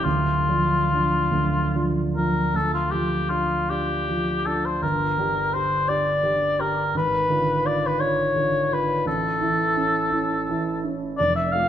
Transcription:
0.04 D1 D2 F4
0.48 F3 D4 F4
0.91 F3 D4 F4
1.31 D1 D2
1.74 F3 D4 F4
2.15 F3 D4 F4 A#4
2.54 D2 A4
2.74 F4
2.91 F3 F4 G4
3.30 D4 F4
3.70 D4 F4 G4
4.09 F3 F4
4.46 D4 F4 A4
4.65 C5
4.83 G1 A#4
5.18 D3 G4
5.54 D4 G4 C5
5.88 D4 G4 D5
6.23 D3 G4
6.59 D4 G4 A#4
6.95 G#1 B4
7.29 D3 F4
7.64 D4 F4 D5
7.86 B4
8.00 D4 F4 C#5
8.36 D3 F4
8.70 D4 F4 B4
9.06 A1 A4
9.41 E3 E4
9.76 C#4 E4
10.12 C#4 E4
10.49 E3 E4
10.84 C#4 E4
11.18 F1 D5
11.36 E5
11.52 A3 F4 F5

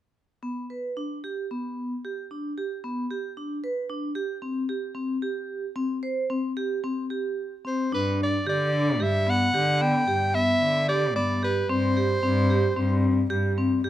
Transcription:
0.43 B3
0.70 B4
0.97 D4
1.24 G4
1.51 B3
2.05 G4
2.31 D4
2.58 G4
2.84 B3
3.11 G4
3.37 D4
3.64 B4
3.89 D4
4.15 G4
4.42 C4
4.69 G4
4.95 C4
5.22 G4
5.76 C4
6.03 C5
6.30 C4
6.57 G4
6.84 C4
7.10 G4
7.65 C4 C5
7.92 G2 D4 B4
8.23 D5
8.47 D3 G4 D5
8.73 D4
9.00 G2 G4 E5
9.27 B3 F#5
9.54 D3 G4
9.81 B3 G5
10.08 G2 G4
10.34 B3 E5
10.63 D3
10.88 G4 D5
11.16 G2 B3 D5
11.43 G4 B4
11.69 G2 C4 C5
11.97 G4
12.23 G2 C4
12.50 G4
12.76 G2 C4
13.30 G2 G4
13.58 C4
13.84 G2 G4

